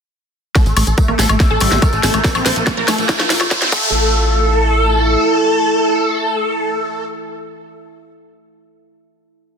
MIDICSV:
0, 0, Header, 1, 8, 480
1, 0, Start_track
1, 0, Tempo, 422535
1, 630, Time_signature, 4, 2, 24, 8
1, 10882, End_track
2, 0, Start_track
2, 0, Title_t, "Ambient pad"
2, 0, Program_c, 0, 92
2, 630, Note_on_c, 0, 64, 80
2, 749, Note_on_c, 0, 69, 82
2, 1090, Note_on_c, 0, 76, 74
2, 2550, Note_off_c, 0, 64, 0
2, 2550, Note_off_c, 0, 69, 0
2, 2550, Note_off_c, 0, 76, 0
2, 2551, Note_on_c, 0, 65, 88
2, 2752, Note_on_c, 0, 77, 73
2, 4230, Note_off_c, 0, 65, 0
2, 4230, Note_off_c, 0, 77, 0
2, 4230, Note_on_c, 0, 64, 78
2, 4302, Note_on_c, 0, 69, 79
2, 4614, Note_on_c, 0, 76, 80
2, 8001, Note_off_c, 0, 64, 0
2, 8073, Note_off_c, 0, 69, 0
2, 8384, Note_off_c, 0, 76, 0
2, 10882, End_track
3, 0, Start_track
3, 0, Title_t, "Synth drone"
3, 0, Program_c, 1, 95
3, 630, Note_on_c, 1, 57, 81
3, 630, Note_on_c, 1, 69, 79
3, 4230, Note_off_c, 1, 57, 0
3, 4230, Note_off_c, 1, 69, 0
3, 10882, End_track
4, 0, Start_track
4, 0, Title_t, "Digital synth lead"
4, 0, Program_c, 2, 84
4, 630, Note_on_c, 2, 69, 97
4, 708, Note_off_c, 2, 69, 0
4, 750, Note_on_c, 2, 57, 65
4, 828, Note_off_c, 2, 57, 0
4, 870, Note_on_c, 2, 57, 68
4, 948, Note_off_c, 2, 57, 0
4, 989, Note_on_c, 2, 69, 90
4, 1068, Note_off_c, 2, 69, 0
4, 1110, Note_on_c, 2, 57, 64
4, 1188, Note_off_c, 2, 57, 0
4, 1229, Note_on_c, 2, 57, 66
4, 1308, Note_off_c, 2, 57, 0
4, 1350, Note_on_c, 2, 69, 90
4, 1428, Note_off_c, 2, 69, 0
4, 1470, Note_on_c, 2, 57, 64
4, 1548, Note_off_c, 2, 57, 0
4, 1589, Note_on_c, 2, 57, 65
4, 1668, Note_off_c, 2, 57, 0
4, 1709, Note_on_c, 2, 69, 92
4, 1788, Note_off_c, 2, 69, 0
4, 1830, Note_on_c, 2, 57, 64
4, 1908, Note_off_c, 2, 57, 0
4, 1950, Note_on_c, 2, 57, 67
4, 2028, Note_off_c, 2, 57, 0
4, 2070, Note_on_c, 2, 70, 90
4, 2148, Note_off_c, 2, 70, 0
4, 2190, Note_on_c, 2, 57, 66
4, 2268, Note_off_c, 2, 57, 0
4, 2310, Note_on_c, 2, 69, 97
4, 2388, Note_off_c, 2, 69, 0
4, 2430, Note_on_c, 2, 58, 65
4, 2508, Note_off_c, 2, 58, 0
4, 2550, Note_on_c, 2, 58, 65
4, 2628, Note_off_c, 2, 58, 0
4, 2669, Note_on_c, 2, 58, 66
4, 2748, Note_off_c, 2, 58, 0
4, 2790, Note_on_c, 2, 72, 98
4, 2868, Note_off_c, 2, 72, 0
4, 2910, Note_on_c, 2, 58, 64
4, 2988, Note_off_c, 2, 58, 0
4, 3030, Note_on_c, 2, 58, 66
4, 3108, Note_off_c, 2, 58, 0
4, 3150, Note_on_c, 2, 58, 66
4, 3228, Note_off_c, 2, 58, 0
4, 3270, Note_on_c, 2, 69, 91
4, 3348, Note_off_c, 2, 69, 0
4, 3390, Note_on_c, 2, 58, 65
4, 3468, Note_off_c, 2, 58, 0
4, 3510, Note_on_c, 2, 58, 66
4, 3588, Note_off_c, 2, 58, 0
4, 4230, Note_on_c, 2, 69, 107
4, 8001, Note_off_c, 2, 69, 0
4, 10882, End_track
5, 0, Start_track
5, 0, Title_t, "Synth arpeggio sound"
5, 0, Program_c, 3, 84
5, 630, Note_on_c, 3, 57, 78
5, 741, Note_off_c, 3, 57, 0
5, 870, Note_on_c, 3, 57, 75
5, 981, Note_off_c, 3, 57, 0
5, 1110, Note_on_c, 3, 70, 82
5, 1155, Note_off_c, 3, 70, 0
5, 1230, Note_on_c, 3, 58, 98
5, 1304, Note_off_c, 3, 58, 0
5, 1350, Note_on_c, 3, 57, 79
5, 1457, Note_off_c, 3, 57, 0
5, 1470, Note_on_c, 3, 57, 76
5, 1515, Note_off_c, 3, 57, 0
5, 1710, Note_on_c, 3, 69, 103
5, 1754, Note_off_c, 3, 69, 0
5, 1830, Note_on_c, 3, 55, 96
5, 1875, Note_off_c, 3, 55, 0
5, 1950, Note_on_c, 3, 55, 75
5, 2024, Note_off_c, 3, 55, 0
5, 2069, Note_on_c, 3, 57, 81
5, 2181, Note_off_c, 3, 57, 0
5, 2310, Note_on_c, 3, 57, 79
5, 2421, Note_off_c, 3, 57, 0
5, 2550, Note_on_c, 3, 72, 82
5, 2595, Note_off_c, 3, 72, 0
5, 2670, Note_on_c, 3, 60, 99
5, 2744, Note_off_c, 3, 60, 0
5, 2790, Note_on_c, 3, 58, 78
5, 2896, Note_off_c, 3, 58, 0
5, 2910, Note_on_c, 3, 58, 75
5, 2954, Note_off_c, 3, 58, 0
5, 3150, Note_on_c, 3, 70, 104
5, 3194, Note_off_c, 3, 70, 0
5, 3270, Note_on_c, 3, 57, 108
5, 3315, Note_off_c, 3, 57, 0
5, 3390, Note_on_c, 3, 57, 79
5, 3464, Note_off_c, 3, 57, 0
5, 3509, Note_on_c, 3, 58, 86
5, 3621, Note_off_c, 3, 58, 0
5, 3750, Note_on_c, 3, 58, 74
5, 3861, Note_off_c, 3, 58, 0
5, 3990, Note_on_c, 3, 72, 86
5, 4034, Note_off_c, 3, 72, 0
5, 4110, Note_on_c, 3, 60, 105
5, 4184, Note_off_c, 3, 60, 0
5, 4230, Note_on_c, 3, 57, 100
5, 4676, Note_off_c, 3, 57, 0
5, 10882, End_track
6, 0, Start_track
6, 0, Title_t, "Analog synth bass"
6, 0, Program_c, 4, 38
6, 750, Note_on_c, 4, 33, 88
6, 830, Note_off_c, 4, 33, 0
6, 870, Note_on_c, 4, 33, 102
6, 950, Note_off_c, 4, 33, 0
6, 990, Note_on_c, 4, 33, 93
6, 1070, Note_off_c, 4, 33, 0
6, 1230, Note_on_c, 4, 33, 85
6, 1310, Note_off_c, 4, 33, 0
6, 1350, Note_on_c, 4, 33, 99
6, 1430, Note_off_c, 4, 33, 0
6, 1470, Note_on_c, 4, 33, 89
6, 1550, Note_off_c, 4, 33, 0
6, 1709, Note_on_c, 4, 33, 85
6, 1790, Note_off_c, 4, 33, 0
6, 1829, Note_on_c, 4, 33, 99
6, 1910, Note_off_c, 4, 33, 0
6, 1949, Note_on_c, 4, 33, 93
6, 2030, Note_off_c, 4, 33, 0
6, 2190, Note_on_c, 4, 33, 84
6, 2270, Note_off_c, 4, 33, 0
6, 2310, Note_on_c, 4, 33, 97
6, 2390, Note_off_c, 4, 33, 0
6, 2430, Note_on_c, 4, 33, 92
6, 2510, Note_off_c, 4, 33, 0
6, 2670, Note_on_c, 4, 34, 91
6, 2750, Note_off_c, 4, 34, 0
6, 2790, Note_on_c, 4, 34, 99
6, 2870, Note_off_c, 4, 34, 0
6, 2910, Note_on_c, 4, 34, 93
6, 2990, Note_off_c, 4, 34, 0
6, 3150, Note_on_c, 4, 34, 88
6, 3230, Note_off_c, 4, 34, 0
6, 3269, Note_on_c, 4, 34, 98
6, 3350, Note_off_c, 4, 34, 0
6, 3390, Note_on_c, 4, 34, 91
6, 3470, Note_off_c, 4, 34, 0
6, 3630, Note_on_c, 4, 34, 88
6, 3710, Note_off_c, 4, 34, 0
6, 3750, Note_on_c, 4, 34, 98
6, 3830, Note_off_c, 4, 34, 0
6, 3870, Note_on_c, 4, 34, 91
6, 3950, Note_off_c, 4, 34, 0
6, 4110, Note_on_c, 4, 34, 89
6, 4190, Note_off_c, 4, 34, 0
6, 4230, Note_on_c, 4, 33, 100
6, 5864, Note_off_c, 4, 33, 0
6, 10882, End_track
7, 0, Start_track
7, 0, Title_t, "Riser"
7, 0, Program_c, 5, 103
7, 630, Note_on_c, 5, 60, 79
7, 4470, Note_off_c, 5, 60, 0
7, 10882, End_track
8, 0, Start_track
8, 0, Title_t, "Drums"
8, 630, Note_on_c, 9, 36, 117
8, 630, Note_on_c, 9, 38, 50
8, 630, Note_on_c, 9, 42, 84
8, 630, Note_on_c, 9, 54, 52
8, 630, Note_on_c, 9, 76, 38
8, 743, Note_off_c, 9, 54, 0
8, 744, Note_off_c, 9, 36, 0
8, 744, Note_off_c, 9, 38, 0
8, 744, Note_off_c, 9, 42, 0
8, 744, Note_off_c, 9, 76, 0
8, 750, Note_on_c, 9, 42, 39
8, 753, Note_on_c, 9, 54, 34
8, 864, Note_off_c, 9, 42, 0
8, 866, Note_off_c, 9, 54, 0
8, 869, Note_on_c, 9, 54, 90
8, 870, Note_on_c, 9, 46, 106
8, 870, Note_on_c, 9, 76, 75
8, 983, Note_off_c, 9, 54, 0
8, 984, Note_off_c, 9, 46, 0
8, 984, Note_off_c, 9, 76, 0
8, 989, Note_on_c, 9, 54, 38
8, 990, Note_on_c, 9, 42, 54
8, 1103, Note_off_c, 9, 54, 0
8, 1104, Note_off_c, 9, 42, 0
8, 1108, Note_on_c, 9, 54, 50
8, 1110, Note_on_c, 9, 36, 116
8, 1110, Note_on_c, 9, 42, 77
8, 1221, Note_off_c, 9, 54, 0
8, 1224, Note_off_c, 9, 36, 0
8, 1224, Note_off_c, 9, 42, 0
8, 1230, Note_on_c, 9, 76, 37
8, 1344, Note_off_c, 9, 76, 0
8, 1350, Note_on_c, 9, 38, 54
8, 1350, Note_on_c, 9, 46, 100
8, 1355, Note_on_c, 9, 54, 102
8, 1464, Note_off_c, 9, 38, 0
8, 1464, Note_off_c, 9, 46, 0
8, 1466, Note_off_c, 9, 54, 0
8, 1466, Note_on_c, 9, 54, 40
8, 1470, Note_on_c, 9, 42, 56
8, 1470, Note_on_c, 9, 76, 72
8, 1580, Note_off_c, 9, 54, 0
8, 1584, Note_off_c, 9, 42, 0
8, 1584, Note_off_c, 9, 76, 0
8, 1590, Note_on_c, 9, 36, 114
8, 1590, Note_on_c, 9, 38, 61
8, 1590, Note_on_c, 9, 42, 86
8, 1594, Note_on_c, 9, 54, 52
8, 1704, Note_off_c, 9, 36, 0
8, 1704, Note_off_c, 9, 38, 0
8, 1704, Note_off_c, 9, 42, 0
8, 1708, Note_off_c, 9, 54, 0
8, 1822, Note_on_c, 9, 54, 84
8, 1830, Note_on_c, 9, 46, 110
8, 1830, Note_on_c, 9, 76, 39
8, 1936, Note_off_c, 9, 54, 0
8, 1944, Note_off_c, 9, 46, 0
8, 1944, Note_off_c, 9, 76, 0
8, 1950, Note_on_c, 9, 38, 56
8, 1950, Note_on_c, 9, 42, 55
8, 1952, Note_on_c, 9, 54, 39
8, 2063, Note_off_c, 9, 38, 0
8, 2063, Note_off_c, 9, 42, 0
8, 2066, Note_off_c, 9, 54, 0
8, 2070, Note_on_c, 9, 36, 116
8, 2070, Note_on_c, 9, 42, 81
8, 2070, Note_on_c, 9, 76, 75
8, 2071, Note_on_c, 9, 54, 52
8, 2183, Note_off_c, 9, 42, 0
8, 2183, Note_off_c, 9, 76, 0
8, 2184, Note_off_c, 9, 36, 0
8, 2184, Note_off_c, 9, 54, 0
8, 2190, Note_on_c, 9, 42, 40
8, 2196, Note_on_c, 9, 54, 38
8, 2303, Note_off_c, 9, 42, 0
8, 2309, Note_off_c, 9, 54, 0
8, 2310, Note_on_c, 9, 38, 68
8, 2310, Note_on_c, 9, 46, 104
8, 2310, Note_on_c, 9, 54, 94
8, 2423, Note_off_c, 9, 38, 0
8, 2423, Note_off_c, 9, 46, 0
8, 2423, Note_off_c, 9, 54, 0
8, 2427, Note_on_c, 9, 54, 42
8, 2430, Note_on_c, 9, 42, 56
8, 2430, Note_on_c, 9, 76, 38
8, 2540, Note_off_c, 9, 54, 0
8, 2543, Note_off_c, 9, 42, 0
8, 2543, Note_off_c, 9, 76, 0
8, 2547, Note_on_c, 9, 54, 59
8, 2550, Note_on_c, 9, 36, 126
8, 2550, Note_on_c, 9, 38, 77
8, 2550, Note_on_c, 9, 42, 81
8, 2661, Note_off_c, 9, 54, 0
8, 2663, Note_off_c, 9, 36, 0
8, 2663, Note_off_c, 9, 38, 0
8, 2663, Note_off_c, 9, 42, 0
8, 2670, Note_on_c, 9, 42, 38
8, 2670, Note_on_c, 9, 54, 35
8, 2670, Note_on_c, 9, 76, 78
8, 2784, Note_off_c, 9, 42, 0
8, 2784, Note_off_c, 9, 54, 0
8, 2784, Note_off_c, 9, 76, 0
8, 2790, Note_on_c, 9, 38, 80
8, 2790, Note_on_c, 9, 46, 109
8, 2791, Note_on_c, 9, 54, 90
8, 2904, Note_off_c, 9, 38, 0
8, 2904, Note_off_c, 9, 46, 0
8, 2905, Note_off_c, 9, 54, 0
8, 2908, Note_on_c, 9, 54, 36
8, 2910, Note_on_c, 9, 42, 54
8, 3022, Note_off_c, 9, 54, 0
8, 3024, Note_off_c, 9, 42, 0
8, 3030, Note_on_c, 9, 36, 127
8, 3030, Note_on_c, 9, 38, 79
8, 3030, Note_on_c, 9, 42, 77
8, 3030, Note_on_c, 9, 76, 38
8, 3031, Note_on_c, 9, 54, 62
8, 3143, Note_off_c, 9, 36, 0
8, 3144, Note_off_c, 9, 38, 0
8, 3144, Note_off_c, 9, 42, 0
8, 3144, Note_off_c, 9, 76, 0
8, 3145, Note_off_c, 9, 54, 0
8, 3270, Note_on_c, 9, 38, 86
8, 3270, Note_on_c, 9, 46, 108
8, 3270, Note_on_c, 9, 76, 74
8, 3275, Note_on_c, 9, 54, 95
8, 3384, Note_off_c, 9, 38, 0
8, 3384, Note_off_c, 9, 46, 0
8, 3384, Note_off_c, 9, 76, 0
8, 3389, Note_off_c, 9, 54, 0
8, 3390, Note_on_c, 9, 42, 54
8, 3404, Note_on_c, 9, 54, 39
8, 3504, Note_off_c, 9, 42, 0
8, 3510, Note_on_c, 9, 36, 127
8, 3510, Note_on_c, 9, 38, 93
8, 3510, Note_on_c, 9, 42, 81
8, 3516, Note_off_c, 9, 54, 0
8, 3516, Note_on_c, 9, 54, 53
8, 3623, Note_off_c, 9, 36, 0
8, 3623, Note_off_c, 9, 38, 0
8, 3623, Note_off_c, 9, 42, 0
8, 3629, Note_off_c, 9, 54, 0
8, 3630, Note_on_c, 9, 38, 84
8, 3630, Note_on_c, 9, 76, 39
8, 3744, Note_off_c, 9, 38, 0
8, 3744, Note_off_c, 9, 76, 0
8, 3750, Note_on_c, 9, 38, 99
8, 3750, Note_on_c, 9, 46, 111
8, 3750, Note_on_c, 9, 54, 89
8, 3863, Note_off_c, 9, 38, 0
8, 3863, Note_off_c, 9, 46, 0
8, 3864, Note_off_c, 9, 54, 0
8, 3870, Note_on_c, 9, 38, 85
8, 3870, Note_on_c, 9, 76, 77
8, 3875, Note_on_c, 9, 54, 40
8, 3983, Note_off_c, 9, 38, 0
8, 3983, Note_off_c, 9, 76, 0
8, 3989, Note_off_c, 9, 54, 0
8, 3990, Note_on_c, 9, 36, 123
8, 3990, Note_on_c, 9, 38, 99
8, 3990, Note_on_c, 9, 42, 80
8, 3993, Note_on_c, 9, 54, 53
8, 4102, Note_off_c, 9, 54, 0
8, 4102, Note_on_c, 9, 54, 42
8, 4103, Note_off_c, 9, 36, 0
8, 4103, Note_off_c, 9, 38, 0
8, 4103, Note_off_c, 9, 42, 0
8, 4110, Note_on_c, 9, 38, 93
8, 4110, Note_on_c, 9, 42, 40
8, 4216, Note_off_c, 9, 54, 0
8, 4223, Note_off_c, 9, 38, 0
8, 4223, Note_off_c, 9, 42, 0
8, 4228, Note_on_c, 9, 54, 99
8, 4229, Note_on_c, 9, 49, 90
8, 4230, Note_on_c, 9, 36, 114
8, 4341, Note_off_c, 9, 54, 0
8, 4343, Note_off_c, 9, 36, 0
8, 4343, Note_off_c, 9, 49, 0
8, 4353, Note_on_c, 9, 54, 46
8, 4467, Note_off_c, 9, 54, 0
8, 10882, End_track
0, 0, End_of_file